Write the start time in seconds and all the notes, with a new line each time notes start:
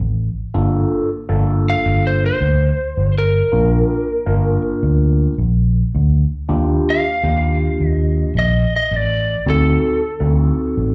0.00 A1
0.54 G1 A#3 D4 F4 A4
1.29 G1 A#3 D4 F4 A4
1.70 F5
1.86 G1
2.07 C5
2.26 C5
2.41 D2
2.97 G1
3.18 A#4
3.52 A#1 A#3 D4 F4 A#4
4.26 G1 A#3 D4 F4 A#4
4.83 D2
5.38 A#1
5.95 D2
6.49 D#2 A#3 D4 F4 G4
6.90 F5
7.23 D#2 A#3 D4 F4 G4
7.80 D#2
7.88 D#5
8.35 A#1 D#5
8.76 D#5
8.91 A1
8.96 D5
9.46 D2 C4 D#4 F#4 A4
10.20 D2 C4 D#4 F#4 A4
10.77 A1